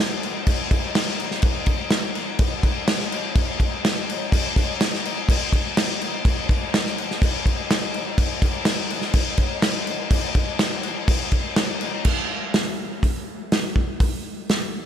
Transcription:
0.23 crash medium
0.47 kick loud
0.47 crash medium
0.71 kick medium
0.71 crash medium
0.95 snare loud
0.95 crash medium
1.08 snare soft
1.20 crash medium
1.31 snare soft
1.42 kick loud
1.42 crash medium
1.66 kick medium
1.66 crash medium
1.90 snare loud
1.90 crash medium
2.15 crash medium
2.39 kick loud
2.39 crash medium
2.63 kick loud
2.63 crash medium
2.87 snare loud
2.87 crash medium
3.00 snare soft
3.12 crash medium
3.36 kick loud
3.36 crash medium
3.60 kick medium
3.60 crash medium
3.85 snare loud
3.85 crash medium
4.09 crash medium
4.32 kick loud
4.32 crash loud
4.56 kick medium
4.56 crash medium
4.81 snare loud
4.81 crash medium
4.94 snare soft
5.05 crash medium
5.29 kick loud
5.29 crash loud
5.53 kick medium
5.53 crash medium
5.77 snare loud
5.77 crash loud
6.01 crash medium
6.25 kick loud
6.25 crash medium
6.49 kick medium
6.49 crash medium
6.74 snare loud
6.74 crash medium
6.86 snare soft
6.98 crash medium
7.11 snare soft
7.22 kick loud
7.22 crash medium
7.46 kick medium
7.46 crash medium
7.70 snare loud
7.70 crash medium
7.94 crash medium
8.18 kick loud
8.18 crash medium
8.42 kick medium
8.42 crash medium
8.65 snare loud
8.65 crash medium
8.90 crash medium
9.01 snare soft
9.13 kick loud
9.13 crash medium
9.37 kick medium
9.37 crash medium
9.62 snare loud
9.62 crash medium
9.87 crash medium
10.11 kick loud
10.11 crash medium
10.35 kick medium
10.35 crash medium
10.59 snare loud
10.59 crash medium
10.83 crash medium
11.08 kick loud
11.08 crash medium
11.31 kick medium
11.31 crash medium
11.56 snare loud
11.56 crash medium
11.81 crash medium
12.05 kick loud
12.05 crash medium
12.54 snare loud
12.54 open hi-hat soft
13.03 kick medium
13.03 open hi-hat soft
13.52 snare loud
13.52 open hi-hat soft
13.76 kick medium
14.00 kick loud
14.00 open hi-hat soft
14.50 snare loud
14.50 open hi-hat soft

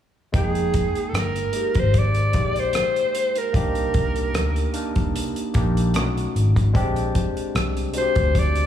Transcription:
0.32 0.81 F1 medium
0.32 1.35 G#3 medium
0.32 1.36 A#3 medium
0.32 1.36 D#4 medium
0.32 1.37 G5 medium
0.32 kick loud
0.32 closed hi-hat medium
0.37 1.11 G#4 medium
0.55 closed hi-hat soft
0.74 kick medium
0.74 closed hi-hat medium
0.95 closed hi-hat soft
1.10 1.44 G1 medium
1.10 1.20 A4 medium
1.15 cross-stick medium
1.15 closed hi-hat medium
1.19 1.81 A#4 medium
1.36 closed hi-hat soft
1.52 2.21 G#3 medium
1.52 2.22 A#3 medium
1.52 2.22 D#4 medium
1.52 2.22 G4 medium
1.52 closed hi-hat medium
1.74 2.34 G#1 medium
1.74 kick medium
1.74 closed hi-hat soft
1.79 2.00 C5 medium
1.94 kick medium
1.94 closed hi-hat medium
1.98 2.61 D5 medium
2.15 closed hi-hat soft
2.33 2.81 A#1 medium
2.33 3.35 G#3 medium
2.33 3.36 A#3 soft
2.33 3.36 D#4 medium
2.33 3.37 G4 medium
2.33 kick medium
2.33 cross-stick soft
2.33 closed hi-hat medium
2.56 3.39 C5 medium
2.56 closed hi-hat soft
2.73 cross-stick medium
2.73 closed hi-hat medium
2.96 closed hi-hat soft
3.15 closed hi-hat medium
3.35 3.55 A#4 medium
3.35 closed hi-hat soft
3.53 3.85 C2 medium
3.53 4.55 A#3 medium
3.53 4.56 D4 medium
3.53 4.56 D#4 medium
3.53 4.57 G4 medium
3.53 4.71 A#4 medium
3.53 kick loud
3.53 closed hi-hat medium
3.75 closed hi-hat soft
3.94 4.35 C2 medium
3.94 kick medium
3.94 closed hi-hat medium
4.16 closed hi-hat soft
4.34 4.65 D2 medium
4.34 cross-stick medium
4.34 closed hi-hat medium
4.56 closed hi-hat soft
4.73 5.42 A#3 medium
4.73 5.42 D4 medium
4.73 5.42 D#4 medium
4.73 5.43 A#4 medium
4.73 closed hi-hat medium
4.96 5.10 C2 medium
4.96 kick medium
4.96 closed hi-hat soft
5.16 closed hi-hat medium
5.36 closed hi-hat medium
5.54 5.96 A#1 medium
5.54 5.94 A#3 medium
5.54 5.94 D4 medium
5.54 5.95 D#4 medium
5.54 5.95 G4 medium
5.54 kick medium
5.54 cross-stick soft
5.54 closed hi-hat medium
5.77 closed hi-hat medium
5.94 6.25 B1 medium
5.94 6.62 A3 medium
5.94 6.62 C#4 medium
5.94 6.02 D4 medium
5.94 6.63 F#4 medium
5.94 cross-stick loud
5.94 closed hi-hat medium
6.01 6.66 D#4 medium
6.17 closed hi-hat soft
6.36 6.75 G#1 medium
6.36 closed hi-hat medium
6.56 kick medium
6.56 closed hi-hat soft
6.73 7.21 A#1 medium
6.73 7.76 G#3 loud
6.73 7.76 C4 medium
6.73 7.77 D4 loud
6.73 7.77 G4 loud
6.73 kick loud
6.73 closed hi-hat medium
6.96 closed hi-hat soft
7.15 kick medium
7.15 closed hi-hat medium
7.37 closed hi-hat soft
7.55 7.85 C2 medium
7.55 cross-stick medium
7.55 closed hi-hat medium
7.77 closed hi-hat soft
7.94 8.62 G#3 medium
7.94 8.62 C4 medium
7.94 8.63 D4 medium
7.94 8.02 F#4 medium
7.94 8.40 C5 medium
7.94 closed hi-hat medium
8.02 8.66 G4 medium
8.15 8.61 D2 medium
8.15 kick medium
8.15 closed hi-hat soft
8.35 8.66 D5 loud
8.35 kick medium
8.35 closed hi-hat medium
8.55 closed hi-hat soft

